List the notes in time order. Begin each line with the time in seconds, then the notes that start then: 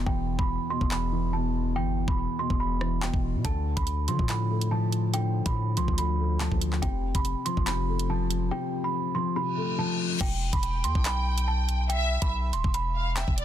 Already playing: E2 B2 E3
0.06 E1 E2 G5, kick
0.39 E1 B5, kick
0.70 B2 C6
0.81 E1, kick
0.91 E2 B5, clap
1.12 E3
1.33 B2 A5
1.76 G1 E2 G5
2.08 E1 B5, kick
2.39 B2 C6
2.50 E1, kick
2.60 E2 B5
2.81 E3, cross-stick
3.02 B2 G5, clap
3.14 E1, kick
3.35 B2
3.45 D2 D3 A5, kick, closed hi-hat
3.77 D2 B5, kick, closed hi-hat
3.87 closed hi-hat
4.08 D3 F3 C6, closed hi-hat
4.19 A2, kick
4.29 D3 B5, clap, closed hi-hat
4.50 A3
4.61 closed hi-hat
4.71 F3 A5
4.92 closed hi-hat
5.14 D3 G5, closed hi-hat
5.46 A2 B5, kick, closed hi-hat
5.77 C2 F3 C6, closed hi-hat
5.88 D2, kick
5.98 D3 B5, closed hi-hat
6.19 A3
6.40 A5, clap, closed hi-hat
6.52 D2, kick
6.62 closed hi-hat
6.73 clap
6.82 F1 C3 G5, kick, closed hi-hat
7.15 F1 B5, kick, closed hi-hat
7.25 closed hi-hat
7.46 F3 C6, closed hi-hat
7.57 F1, kick
7.67 C3 B5, clap, closed hi-hat
7.88 A3
7.99 closed hi-hat
8.10 F3 A5
8.31 closed hi-hat
8.51 C3 G5
8.84 B5
9.15 F3 C6
9.36 C3 B5, reverse cymbal
9.57 A3
9.78 F3 A5
10.21 E1 G5, kick, closed hi-hat, crash
10.53 E1 B5, kick, closed hi-hat
10.63 G5, closed hi-hat
10.84 E2 C6, closed hi-hat
10.95 B1, kick
11.05 B5, clap, closed hi-hat
11.38 closed hi-hat
11.48 A5
11.69 closed hi-hat
11.89 E5 G5, closed hi-hat
12.22 B1 B5, kick, closed hi-hat
12.53 D1 C6, closed hi-hat
12.64 E1, kick
12.74 B5, closed hi-hat
12.95 F5
13.17 E5 G5, clap, closed hi-hat
13.28 E1, kick
13.38 D5, closed hi-hat